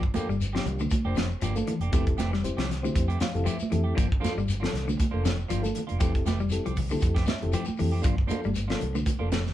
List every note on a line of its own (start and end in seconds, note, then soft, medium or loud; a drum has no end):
0.03 muted clean electric guitar stroke soft
0.03 kick medium
0.14 0.28 F3 medium
0.14 0.33 A#3 medium
0.14 0.29 A#3 medium
0.14 0.33 D4 medium
0.14 0.34 F4 medium
0.14 0.28 G4 loud
0.14 0.34 A4 medium
0.14 closed hi-hat soft
0.14 high conga medium
0.14 shekere medium
0.29 0.57 G1 medium
0.29 0.44 G3 medium
0.29 muted clean electric guitar stroke soft
0.29 shekere soft
0.41 closed hi-hat medium
0.41 shekere medium
0.53 0.69 F3 medium
0.53 0.65 A#3 soft
0.53 0.78 A#3 medium
0.53 0.79 D4 medium
0.53 0.78 F4 medium
0.53 0.65 G4 medium
0.53 0.79 G4 medium
0.53 muted clean electric guitar stroke medium
0.53 snare medium
0.53 closed hi-hat soft
0.65 0.85 C2 loud
0.65 muted clean electric guitar stroke soft
0.65 closed hi-hat soft
0.65 low conga medium
0.65 shekere soft
0.79 0.95 D3 medium
0.79 muted clean electric guitar stroke soft
0.79 high conga medium
0.79 shekere medium
0.90 muted clean electric guitar stroke soft
0.90 kick medium
0.90 closed hi-hat medium
0.90 high conga medium
0.90 shekere medium
1.05 1.33 F1 medium
1.05 1.17 F3 medium
1.05 1.28 A#3 medium
1.05 1.16 A#3 medium
1.05 1.17 D4 medium
1.05 1.29 D4 medium
1.05 1.29 F4 medium
1.05 1.16 G4 medium
1.05 1.30 C5 medium
1.16 1.32 F3 medium
1.16 muted clean electric guitar stroke soft
1.16 snare medium
1.16 closed hi-hat medium
1.16 high conga medium
1.16 shekere medium
1.30 shekere soft
1.41 1.62 G1 medium
1.41 1.57 F3 medium
1.41 1.56 F3 medium
1.41 1.56 A#3 medium
1.41 1.56 D4 medium
1.41 1.56 G4 medium
1.41 closed hi-hat medium
1.41 shekere medium
1.55 1.73 A#3 medium
1.55 1.73 D4 medium
1.55 1.73 F4 medium
1.55 1.73 A4 medium
1.55 muted clean electric guitar stroke soft
1.55 closed hi-hat soft
1.55 high conga medium
1.55 shekere medium
1.67 1.82 E3 medium
1.67 muted clean electric guitar stroke soft
1.67 closed hi-hat medium
1.67 low conga medium
1.67 shekere soft
1.80 1.89 F1 medium
1.80 1.93 A#3 soft
1.80 1.92 D4 medium
1.80 1.92 G4 medium
1.80 closed hi-hat soft
1.92 2.13 F1 loud
1.92 2.06 E3 medium
1.92 2.08 F3 medium
1.92 2.05 A3 medium
1.92 2.16 C4 medium
1.92 2.05 C4 medium
1.92 2.17 E4 medium
1.92 2.17 G4 medium
1.92 2.05 G4 medium
1.92 2.18 A4 medium
1.92 kick loud
1.92 closed hi-hat medium
1.92 shekere medium
2.06 muted clean electric guitar stroke soft
2.06 kick medium
2.06 closed hi-hat soft
2.17 2.49 F1 medium
2.17 2.32 E3 medium
2.17 2.32 A3 medium
2.17 2.32 C4 loud
2.17 2.31 G4 medium
2.17 snare soft
2.17 closed hi-hat medium
2.17 high conga medium
2.17 shekere medium
2.32 2.48 G3 medium
2.32 muted clean electric guitar stroke soft
2.32 snare soft
2.32 shekere soft
2.43 2.62 C4 medium
2.43 2.63 E4 medium
2.43 2.63 G4 medium
2.43 2.63 C5 medium
2.43 closed hi-hat medium
2.43 shekere medium
2.57 2.86 C2 medium
2.57 2.73 F3 medium
2.57 2.68 A3 soft
2.57 2.68 C4 soft
2.57 2.68 G4 medium
2.57 snare medium
2.57 closed hi-hat soft
2.69 muted clean electric guitar stroke soft
2.69 snare soft
2.69 closed hi-hat medium
2.69 low conga medium
2.69 shekere soft
2.82 2.99 D3 medium
2.82 3.06 C4 medium
2.82 3.07 E4 medium
2.82 3.07 G4 medium
2.82 3.07 C5 medium
2.82 muted clean electric guitar stroke soft
2.82 high conga medium
2.82 shekere medium
2.94 3.15 F2 loud
2.94 muted clean electric guitar stroke soft
2.94 kick medium
2.94 closed hi-hat medium
2.94 shekere medium
3.08 3.18 E3 medium
3.08 3.18 A3 medium
3.08 3.19 C4 medium
3.08 3.19 G4 medium
3.08 closed hi-hat soft
3.19 3.36 F3 medium
3.19 3.45 F5 medium
3.19 muted clean electric guitar stroke soft
3.19 snare medium
3.19 closed hi-hat medium
3.19 high conga medium
3.19 shekere medium
3.34 3.44 F1 loud
3.34 3.51 C4 medium
3.34 3.51 E4 medium
3.34 3.52 G4 medium
3.34 3.52 A4 medium
3.34 closed hi-hat soft
3.34 low conga medium
3.34 shekere soft
3.44 3.59 E3 medium
3.44 3.61 F3 medium
3.44 3.58 A3 medium
3.44 3.58 C4 medium
3.44 3.58 G4 medium
3.44 3.93 E5 medium
3.44 closed hi-hat medium
3.44 shekere medium
3.59 muted clean electric guitar stroke soft
3.59 muted fingered electric bass stroke soft
3.59 high conga medium
3.59 shekere medium
3.70 3.92 F2 loud
3.70 3.87 E3 medium
3.70 3.95 C4 medium
3.70 3.95 E4 medium
3.70 3.96 G4 medium
3.70 3.96 A4 medium
3.70 muted clean electric guitar stroke soft
3.70 closed hi-hat soft
3.70 low conga medium
3.70 shekere soft
3.84 3.94 A3 soft
3.84 3.95 G4 medium
3.84 muted clean electric guitar stroke medium
3.94 4.17 G1 loud
3.94 4.10 F3 medium
3.94 4.12 F3 medium
3.94 4.08 A#3 medium
3.94 4.07 D4 medium
3.94 muted clean electric guitar stroke medium
3.94 kick medium
3.94 closed hi-hat medium
3.99 shekere medium
4.08 muted clean electric guitar stroke soft
4.08 kick medium
4.20 4.35 F3 medium
4.20 4.34 A#3 medium
4.20 4.40 A#3 medium
4.20 4.34 D4 medium
4.20 4.41 D4 medium
4.20 4.33 F4 loud
4.20 4.41 F4 medium
4.20 4.41 A4 medium
4.24 snare soft
4.24 closed hi-hat soft
4.24 high conga medium
4.24 shekere medium
4.34 4.66 G1 medium
4.34 4.52 G3 medium
4.34 muted clean electric guitar stroke soft
4.34 shekere soft
4.48 closed hi-hat medium
4.48 shekere medium
4.60 4.77 F3 medium
4.60 4.71 A#3 medium
4.60 4.85 A#3 medium
4.60 4.71 D4 medium
4.60 4.86 D4 medium
4.60 4.71 F4 medium
4.60 4.86 F4 medium
4.60 4.86 A4 medium
4.60 closed hi-hat soft
4.64 snare medium
4.72 4.93 C2 loud
4.72 muted clean electric guitar stroke soft
4.72 closed hi-hat soft
4.72 low conga medium
4.72 shekere soft
4.76 snare soft
4.85 5.03 D3 medium
4.85 muted clean electric guitar stroke soft
4.85 high conga medium
4.85 shekere medium
4.97 muted clean electric guitar stroke soft
4.97 kick medium
4.97 closed hi-hat medium
4.97 shekere medium
5.01 high conga medium
5.11 5.42 F1 medium
5.11 5.23 F3 medium
5.11 5.23 A#3 medium
5.11 5.36 A#3 medium
5.11 5.23 D4 medium
5.11 5.37 D4 medium
5.11 5.23 F4 medium
5.11 5.37 F4 medium
5.11 5.37 A4 medium
5.24 5.40 F3 medium
5.24 muted clean electric guitar stroke soft
5.24 snare medium
5.24 closed hi-hat soft
5.24 high conga medium
5.24 shekere medium
5.40 shekere soft
5.48 5.70 G1 medium
5.48 5.63 F3 medium
5.48 5.65 F3 medium
5.48 5.62 A#3 medium
5.48 5.62 D4 medium
5.48 5.62 F4 medium
5.48 closed hi-hat medium
5.48 shekere medium
5.61 5.80 A#3 medium
5.61 5.80 D4 medium
5.61 5.80 F4 medium
5.61 5.81 A4 loud
5.61 muted clean electric guitar stroke soft
5.61 closed hi-hat soft
5.61 shekere medium
5.65 high conga medium
5.75 muted clean electric guitar stroke soft
5.75 closed hi-hat medium
5.75 low conga medium
5.75 shekere soft
5.87 5.99 A#3 soft
5.87 5.99 D4 soft
5.87 5.99 F4 medium
5.87 closed hi-hat soft
5.91 5.99 F1 medium
5.99 6.21 F1 medium
5.99 6.14 E3 medium
5.99 6.15 F3 medium
5.99 6.13 A3 medium
5.99 6.24 C4 medium
5.99 6.13 C4 medium
5.99 6.24 E4 medium
5.99 6.12 G4 medium
5.99 6.25 G4 medium
5.99 6.25 A4 medium
5.99 kick medium
5.99 closed hi-hat medium
5.99 shekere medium
6.13 muted clean electric guitar stroke soft
6.13 kick medium
6.13 closed hi-hat soft
6.26 6.57 F1 medium
6.26 6.40 E3 medium
6.26 6.39 A3 medium
6.26 6.39 G4 medium
6.26 muted clean electric guitar stroke medium
6.26 snare soft
6.26 closed hi-hat soft
6.26 high conga loud
6.26 shekere medium
6.39 6.55 G3 medium
6.39 muted clean electric guitar stroke soft
6.39 shekere soft
6.49 6.70 C4 medium
6.49 6.70 E4 medium
6.49 6.70 G4 medium
6.49 6.71 A4 medium
6.49 closed hi-hat medium
6.49 shekere medium
6.65 6.95 C2 medium
6.65 6.81 F3 medium
6.65 6.77 C4 medium
6.65 6.77 G4 medium
6.65 muted clean electric guitar stroke soft
6.65 closed hi-hat soft
6.76 muted clean electric guitar stroke soft
6.76 kick medium
6.76 open hi-hat medium
6.76 low conga medium
6.76 shekere soft
6.90 7.06 D3 medium
6.90 7.14 C4 medium
6.90 7.15 E4 medium
6.90 7.15 G4 medium
6.90 7.15 A4 medium
6.90 muted clean electric guitar stroke soft
6.90 high conga medium
6.90 shekere medium
7.00 7.22 F2 loud
7.00 muted clean electric guitar stroke soft
7.00 kick medium
7.00 closed hi-hat medium
7.00 shekere medium
7.15 7.26 E3 medium
7.15 7.26 A3 medium
7.15 7.26 C4 medium
7.15 7.26 G4 medium
7.15 kick medium
7.15 snare soft
7.15 closed hi-hat soft
7.26 7.51 E5 medium
7.26 muted clean electric guitar stroke soft
7.26 snare medium
7.26 closed hi-hat medium
7.26 high conga medium
7.26 shekere medium
7.40 7.52 F1 medium
7.40 7.59 C4 medium
7.40 7.59 E4 medium
7.40 7.59 G4 medium
7.40 7.59 A4 medium
7.40 closed hi-hat soft
7.40 low conga medium
7.40 shekere soft
7.52 7.67 E3 medium
7.52 7.69 F3 medium
7.52 7.65 A3 medium
7.52 7.66 C4 medium
7.52 7.65 G4 medium
7.52 8.01 G5 medium
7.52 closed hi-hat medium
7.52 shekere medium
7.65 muted clean electric guitar stroke soft
7.65 high conga medium
7.65 shekere medium
7.69 muted fingered electric bass stroke soft
7.77 8.00 F2 medium
7.77 7.94 E3 medium
7.77 8.03 C4 medium
7.77 8.03 E4 medium
7.77 8.03 G4 medium
7.77 8.03 A4 medium
7.77 muted clean electric guitar stroke soft
7.77 open hi-hat medium
7.77 low conga medium
7.77 shekere soft
7.92 8.02 A3 soft
7.92 8.01 C4 soft
7.92 8.03 G4 medium
8.02 8.24 G1 loud
8.02 8.20 F3 medium
8.02 8.15 A#3 medium
8.02 8.16 D4 medium
8.02 8.15 F4 medium
8.02 muted clean electric guitar stroke medium
8.02 kick loud
8.02 closed hi-hat medium
8.02 shekere medium
8.17 muted clean electric guitar stroke soft
8.17 kick medium
8.27 8.43 F3 medium
8.27 8.41 A#3 medium
8.27 8.48 A#3 medium
8.27 8.41 D4 medium
8.27 8.48 D4 medium
8.27 8.41 F4 medium
8.27 8.48 F4 medium
8.27 8.49 A4 medium
8.27 closed hi-hat soft
8.27 high conga medium
8.27 shekere medium
8.42 8.73 G1 medium
8.42 8.60 G3 medium
8.42 muted clean electric guitar stroke soft
8.42 shekere soft
8.46 high conga medium
8.55 closed hi-hat medium
8.55 shekere medium
8.68 8.85 F3 medium
8.68 8.79 A#3 soft
8.68 8.93 A#3 medium
8.68 8.79 D4 medium
8.68 8.93 D4 medium
8.68 8.79 F4 medium
8.68 8.93 F4 medium
8.68 8.94 A4 medium
8.68 snare medium
8.68 closed hi-hat soft
8.80 9.01 C2 medium
8.80 muted clean electric guitar stroke soft
8.80 closed hi-hat soft
8.80 low conga medium
8.80 shekere soft
8.94 9.10 D3 medium
8.94 muted clean electric guitar stroke soft
8.94 high conga medium
8.94 shekere medium
9.06 muted clean electric guitar stroke soft
9.06 kick medium
9.06 closed hi-hat medium
9.06 high conga medium
9.06 shekere medium
9.19 9.49 F1 medium
9.19 9.29 F3 medium
9.19 9.29 A#3 medium
9.19 9.43 A#3 medium
9.19 9.29 D4 medium
9.19 9.44 D4 medium
9.19 9.29 F4 medium
9.19 9.44 F4 medium
9.19 9.44 A4 medium
9.30 9.47 F3 medium
9.30 muted clean electric guitar stroke soft
9.30 snare medium
9.30 closed hi-hat soft
9.30 high conga medium
9.30 shekere medium
9.45 snare soft
9.45 low conga medium
9.45 shekere soft